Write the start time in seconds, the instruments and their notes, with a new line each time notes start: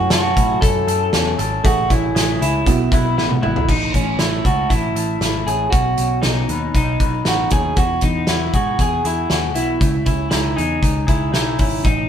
Already playing: clean electric guitar F#3 C#4 F#4, upright piano A3 E4 F#4
0.10 picked electric bass F#2, clean electric guitar F#4 A4, snare, closed hi-hat
0.36 picked electric bass A2, clean electric guitar E4, kick, closed hi-hat
0.61 picked electric bass F#2, clean electric guitar C#4 A4, kick, closed hi-hat
0.87 picked electric bass F#2, clean electric guitar A4, closed hi-hat
1.13 picked electric bass E2, clean electric guitar C#4, snare, closed hi-hat
1.39 picked electric bass G#1, clean electric guitar A4, closed hi-hat
1.64 picked electric bass A1, upright piano A3 C#4 G#4, clean electric guitar A3 F#4, kick, closed hi-hat
1.90 picked electric bass A1, clean electric guitar C#4 E4, kick, closed hi-hat
2.15 picked electric bass A1, clean electric guitar G#4, snare, closed hi-hat
2.40 picked electric bass C#2, clean electric guitar E4, closed hi-hat
2.66 picked electric bass B1, clean electric guitar B2, upright piano B3 E4 F#4, kick, closed hi-hat
2.92 picked electric bass B1, clean electric guitar E4 B4, kick, closed hi-hat
3.17 picked electric bass A1, clean electric guitar B3 E4, snare
3.30 high tom
3.42 picked electric bass G#1, clean electric guitar E4 B4, mid tom
3.56 floor tom
3.68 picked electric bass A1, clean electric guitar A2 D#4, kick, crash
3.94 picked electric bass A1, clean electric guitar C#4, kick, closed hi-hat
4.19 picked electric bass A1, clean electric guitar E4, snare, closed hi-hat
4.45 picked electric bass C#2, clean electric guitar F#4 A4, kick, closed hi-hat
4.70 picked electric bass A1, clean electric guitar E4, kick, closed hi-hat
4.95 picked electric bass A1, clean electric guitar A4, closed hi-hat
5.21 picked electric bass G#1, clean electric guitar E4, snare, closed hi-hat
5.46 picked electric bass A1, clean electric guitar C#4 G#4, closed hi-hat
5.70 picked electric bass B1, clean electric guitar B2 F#4, kick, closed hi-hat
5.97 picked electric bass B1, clean electric guitar C#4, closed hi-hat
6.22 picked electric bass B1, clean electric guitar D#4, snare, closed hi-hat
6.49 picked electric bass D#2, clean electric guitar B4, closed hi-hat
6.75 picked electric bass B1, clean electric guitar D#4, kick, closed hi-hat
7.00 picked electric bass B1, clean electric guitar B4, kick, closed hi-hat
7.25 picked electric bass A1, clean electric guitar D#4 F#4, snare, closed hi-hat
7.50 picked electric bass D#2, clean electric guitar C#4 G#4, kick, closed hi-hat
7.76 picked electric bass E2, clean electric guitar E3 F#4, kick, closed hi-hat
8.01 picked electric bass E2, clean electric guitar B3 D#4, kick, closed hi-hat
8.27 picked electric bass E2, clean electric guitar E4 F#4, snare, closed hi-hat
8.53 picked electric bass G#2, clean electric guitar F#4 G#4, kick, closed hi-hat
8.79 picked electric bass E2, clean electric guitar F#4 G#4, kick, closed hi-hat
9.04 picked electric bass E2, clean electric guitar E4 G#4, closed hi-hat
9.30 picked electric bass D#2, clean electric guitar E4 F#4, snare, closed hi-hat
9.55 picked electric bass B1, clean electric guitar B3 E4, closed hi-hat
9.81 picked electric bass C#2, clean electric guitar C#3, kick, closed hi-hat
10.06 picked electric bass C#2, clean electric guitar C#4 E4, kick, closed hi-hat
10.30 picked electric bass C#2, clean electric guitar D#4 E4, snare, closed hi-hat
10.56 picked electric bass E2, clean electric guitar D#4 G#4, closed hi-hat
10.82 picked electric bass C#2, clean electric guitar D#4, kick, closed hi-hat
11.07 picked electric bass C#2, clean electric guitar E4 G#4, kick, closed hi-hat
11.32 picked electric bass B1, clean electric guitar D#4 E4, snare, closed hi-hat
11.58 picked electric bass G#1, clean electric guitar C#4 E4, kick, open hi-hat
11.83 picked electric bass A1, clean electric guitar A2 D#4, kick, closed hi-hat